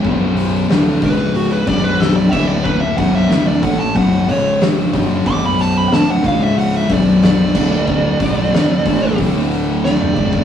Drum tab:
CC |--------------x-|----------------|--------------x-|----------------|
HH |--o-o-o-o-o-o---|--o-o-o-o-o-o-o-|o-o-o-o-o-o-o---|--o-o-o-o-o-----|
SD |----o-------o---|----o-------o---|----o-------o---|----o-------o---|
T2 |----------------|----------------|----------------|-------------o--|
BD |o-----o---o---o-|o-o---o-o-----o-|o-----o---o---o-|o-o---o-o-----oo|